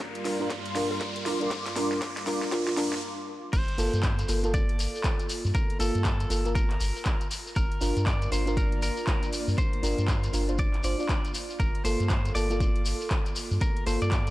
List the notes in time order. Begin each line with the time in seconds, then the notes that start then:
Already playing: G2 G3 A#3 D4 F4 G4 A#4 D5 F5, riser
0.00 C6, kick, snare, closed hi-hat
0.15 closed hi-hat
0.25 D4 F4 A#4, snare, open hi-hat
0.39 D4 F4 A#4
0.50 kick, snare, closed hi-hat
0.66 closed hi-hat
0.75 D4 F4 A#4, snare, open hi-hat
0.91 A#4
0.97 D6, kick, snare, closed hi-hat
1.16 closed hi-hat
1.26 D4 F4 A#4, snare, open hi-hat
1.40 D4 F4 A#4, closed hi-hat
1.51 kick, snare, closed hi-hat
1.66 snare, closed hi-hat
1.76 D4 F4 A#4, snare, open hi-hat
1.92 snare
2.02 kick, snare, closed hi-hat
2.17 snare, closed hi-hat
2.26 D4 F4 A#4, snare, open hi-hat
2.42 snare
2.52 D4 F4 A#4, kick, snare, closed hi-hat
2.67 F4, snare, closed hi-hat
2.77 D4 F4 A#4, snare, open hi-hat
2.92 snare
3.53 G1 F4 C5, kick, closed hi-hat, crash, shekere
3.68 closed hi-hat
3.78 G1 A#3 F4 A4, open hi-hat, shekere
3.93 G2, closed hi-hat, shekere
4.03 kick, clap, closed hi-hat, shekere
4.19 closed hi-hat, shekere
4.28 G1 A#3 F4 A4, open hi-hat, shekere
4.43 A#3 F4 A4, closed hi-hat, shekere
4.54 D5, kick, closed hi-hat, shekere
4.69 closed hi-hat
4.79 open hi-hat, shekere
4.95 shekere
5.04 kick, clap, closed hi-hat, shekere
5.19 closed hi-hat, shekere
5.29 open hi-hat, shekere
5.45 G2, shekere
5.55 A#4, kick, closed hi-hat, shekere
5.70 closed hi-hat
5.79 G1 A#3 F4 A4, open hi-hat, shekere
5.95 G2, closed hi-hat, shekere
6.05 kick, clap, closed hi-hat, shekere
6.20 closed hi-hat, shekere
6.30 G1 A#3 F4 A4, open hi-hat, shekere
6.45 A#3 F4 A#4, closed hi-hat, shekere
6.55 A#4, kick, closed hi-hat, shekere
6.70 clap, closed hi-hat
6.80 G1, open hi-hat, shekere
6.96 shekere
7.05 kick, clap, closed hi-hat, shekere
7.21 closed hi-hat, shekere
7.31 open hi-hat, shekere
7.47 shekere
7.56 G1 A#3 A#4 D5, kick, closed hi-hat, shekere
7.72 closed hi-hat
7.81 G1 D4 F4 A#4, open hi-hat, shekere
7.97 G2, closed hi-hat, shekere
8.06 D5, kick, clap, closed hi-hat, shekere
8.22 closed hi-hat, shekere
8.31 G1 D4 F4 A#4 C5, open hi-hat, shekere
8.46 D4 F4 A#4, closed hi-hat, shekere
8.57 A#4, kick, closed hi-hat, shekere
8.72 closed hi-hat
8.82 A#4, open hi-hat, shekere
8.97 shekere
9.07 kick, clap, closed hi-hat, shekere
9.23 closed hi-hat, shekere
9.33 open hi-hat, shekere
9.48 G2, shekere
9.58 C5, kick, closed hi-hat, shekere
9.73 closed hi-hat
9.83 G1 D4 F4 A#4, open hi-hat, shekere
9.98 G2, closed hi-hat, shekere
10.08 kick, clap, closed hi-hat, shekere
10.23 closed hi-hat, shekere
10.33 G1 D4 F4 A#4, open hi-hat, shekere
10.48 D4 F4 C5, closed hi-hat, shekere
10.58 D5, kick, closed hi-hat, shekere
10.74 clap, closed hi-hat
10.83 G1 D4 F4 C5 D5, open hi-hat, shekere
10.98 D4 F4 D5, shekere
11.09 kick, clap, closed hi-hat, shekere
11.25 closed hi-hat, shekere
11.34 open hi-hat, shekere
11.50 shekere
11.60 G1 A#4, kick, closed hi-hat, shekere
11.75 closed hi-hat
11.84 G1 A#3 F4 A4 C5, open hi-hat, shekere
12.00 G2, closed hi-hat, shekere
12.10 kick, clap, closed hi-hat, shekere
12.25 closed hi-hat, shekere
12.35 G1 A#3 F4 A4 D5, open hi-hat, shekere
12.50 A#3 F4 A4, closed hi-hat, shekere
12.60 kick, closed hi-hat, shekere
12.76 closed hi-hat
12.86 open hi-hat, shekere
13.01 shekere
13.10 kick, clap, closed hi-hat, shekere
13.26 closed hi-hat, shekere
13.36 open hi-hat, shekere
13.51 G2, shekere
13.61 A#4, kick, closed hi-hat, shekere
13.77 closed hi-hat
13.86 G1 A#3 F4 A4 C5, open hi-hat, shekere
14.02 G2 D5, closed hi-hat, shekere
14.11 kick, clap, closed hi-hat, shekere
14.27 closed hi-hat, shekere